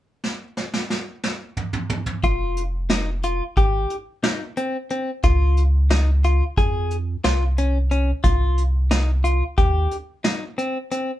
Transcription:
0.24 snare
0.57 snare
0.74 snare
0.90 snare
1.23 snare
1.57 mid tom
1.73 mid tom
1.90 mid tom
2.06 mid tom
2.23 F1 F4, kick, closed hi-hat
2.57 closed hi-hat
2.90 D#4, snare, closed hi-hat
3.23 F4, closed hi-hat
3.57 G#1 G4, kick, closed hi-hat
3.90 closed hi-hat
4.23 D#4, snare, closed hi-hat
4.57 C4, closed hi-hat
4.90 C4, closed hi-hat
5.23 C#2 F4, kick, closed hi-hat
5.57 closed hi-hat
5.90 D#4, snare, closed hi-hat
6.24 F4, closed hi-hat
6.57 F2 G#4, kick, closed hi-hat
6.91 closed hi-hat
7.24 C2 F4, snare, closed hi-hat
7.58 C#4, closed hi-hat
7.91 C#4, closed hi-hat
8.24 C2 F4, kick, closed hi-hat
8.58 closed hi-hat
8.91 D#4, snare, closed hi-hat
9.24 F4, closed hi-hat
9.58 D#2 G4, kick, closed hi-hat
9.91 closed hi-hat
10.24 D#4, snare, closed hi-hat
10.58 C4, closed hi-hat
10.91 C4, closed hi-hat

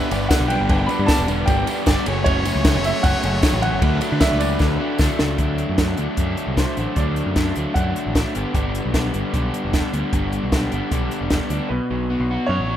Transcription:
Already playing: G3 B3 D4 G4 B4 D5 E5
0.11 G1 G2 D3 G3 B3 D4, ride, tambourine
0.29 G2 D3 G3 B3 D4 F#5, kick, snare, ride, tambourine
0.40 B1
0.48 G2 D3 G3 B3 D4 G5, ride, tambourine
0.61 G1
0.69 G1 G2 D3 G3 B3 D4, kick, ride, tambourine
0.86 G2 D3 G3 B3 B5, ride
0.90 D4, tambourine
0.99 G2
1.06 G2 D3 G3 B3 D4 A5, kick, snare, ride, tambourine
1.19 E1
1.28 G2 D3 G3 B3 D4, ride, tambourine
1.46 G1 G2 D3 G3 B3 D4 G5, kick, ride, tambourine
1.67 G2 D3 G3 B3 D4, ride, tambourine
1.86 G1 G2 D3 G3 B3 D4 D5, kick, snare, ride, tambourine
2.06 F#1 F#2 C#3 F#3 A3 C#4 F#4 C#5, ride, tambourine
2.24 F#1 F#2 C#3 F#3 A3 C#4 C#5, kick, ride, tambourine
2.45 F#2 C#3 F#3 A3 C#4, ride, tambourine
2.56 C#2
2.65 F#2 C#3 F#3 A3 C#4, kick, snare, ride, tambourine
2.75 F#1
2.84 F#2 C#3 F#3 A3 C#4 E5, ride, tambourine
3.03 F#1 F#2 C#3 F#3 A3 C#4 F#5, kick, ride, tambourine
3.23 F#1 F#2 C#3 F#3 A3 C#4, ride, tambourine
3.42 F#2 C#3 F#3 A3 C#4, kick, snare, ride, tambourine
3.53 A1
3.62 F#2 C#3 F#3 A3 C#4 F#5, ride, tambourine
3.73 F#1
3.82 D2 D3 F#3 A3 D4 B4 D5, kick, ride, tambourine
4.01 D3 F#3 A3 D4, ride, tambourine
4.12 D3
4.20 D3 F#3 A3 D4 E5, kick, snare, ride, tambourine
4.32 C#2
4.39 D3 F#3 A3 D4 D5, ride, tambourine
4.59 D2 D3 F#3 A3 D4, kick, snare, tambourine
4.81 D3 F#3 A3 D4
4.98 D2 D3 F#3 A3 D4 A4, kick, snare, tambourine
5.19 C#2 D3 F#3 A3 D4, snare
5.38 D2 D3 F#3 A3 D4, kick, closed hi-hat
5.58 closed hi-hat
5.69 F#2
5.78 D3 F#3 A3 D4, kick, snare, closed hi-hat
5.97 D2 F#3 A3 D4, closed hi-hat
6.17 F#2 D3 F#3 A3 D4, kick, closed hi-hat
6.37 closed hi-hat
6.47 C2
6.57 D3 F#3 A3 D4 C5, kick, snare, closed hi-hat
6.77 A1 F#3 A3 D4, closed hi-hat
6.96 D2 D3 F#3 A3 D4 D5, kick, closed hi-hat
7.16 closed hi-hat
7.26 F#2
7.36 D3 F#3 A3 D4, kick, snare, closed hi-hat
7.56 D2 F#3 A3 D4, closed hi-hat
7.74 F#2 D3 F#3 A3 D4 F#5, kick, closed hi-hat
7.96 closed hi-hat
8.07 A1
8.15 D3 F#3 A3 D4, kick, snare, closed hi-hat
8.35 G1 G2 D3 G3 B3 D4, closed hi-hat
8.54 G1 G2 D3 G3 B3 D4, kick, closed hi-hat
8.75 closed hi-hat
8.86 B1
8.94 D3 G3 B3 D4, kick, snare, closed hi-hat
9.13 G1 G3 B3 D4, closed hi-hat
9.33 B1 G2 D3 G3 B3 D4, kick, closed hi-hat
9.54 closed hi-hat
9.65 E1
9.73 D3 G3 B3 D4, kick, snare, closed hi-hat
9.93 D2 G3 B3 D4, closed hi-hat
10.13 G1 G2 D3 G3 B3 D4, kick, closed hi-hat
10.32 closed hi-hat
10.44 B1
10.52 D3 G3 B3 D4, kick, snare, closed hi-hat
10.72 G1 G3 B3 D4, closed hi-hat
10.91 B1 G2 D3 G3 B3 D4, kick, closed hi-hat
11.11 closed hi-hat
11.21 E1
11.30 D3 G3 B3 D4, kick, snare, closed hi-hat
11.50 D2 G3 B3 D4, closed hi-hat
11.68 B1 B2 D3 B3 D4 B4
11.91 B1 F#3
12.10 B3
12.20 B1
12.30 F#4
12.47 F#2 C#5
12.59 A1
12.69 F#4

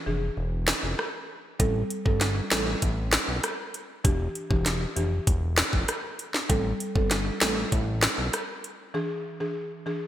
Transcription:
0.06 F1 E3 D4 G#4
0.37 E1
0.68 snare
0.83 F1
0.99 cross-stick
1.59 A1 G3 C4 A4, kick, closed hi-hat
1.90 closed hi-hat
2.05 G1 G3 C4 A4, kick
2.21 snare, closed hi-hat
2.51 A1 G3 C4 A4, snare, closed hi-hat
2.82 A1, kick, closed hi-hat
3.13 snare, closed hi-hat
3.28 B1
3.44 cross-stick, closed hi-hat
3.74 closed hi-hat
4.04 E1 E3 D4 G4, kick, closed hi-hat
4.35 closed hi-hat
4.50 E1 E3 D4 G4, kick
4.66 snare, closed hi-hat
4.96 F1 E3 D4 G4, closed hi-hat
5.27 E1, kick, closed hi-hat
5.58 snare, closed hi-hat
5.73 F1, kick
5.88 cross-stick, closed hi-hat
6.19 closed hi-hat
6.34 snare
6.49 A1 G3 C4 A4, kick, closed hi-hat
6.80 closed hi-hat
6.95 G1 G3 C4 A4, kick
7.11 snare, closed hi-hat
7.41 A1 G3 C4 A4, snare, closed hi-hat
7.72 A1, kick, closed hi-hat
8.03 snare, closed hi-hat
8.18 B1
8.33 cross-stick, closed hi-hat
8.64 closed hi-hat
8.94 E3 D4 G#4
9.40 E3 D4 G#4
9.86 E3 D4 G#4

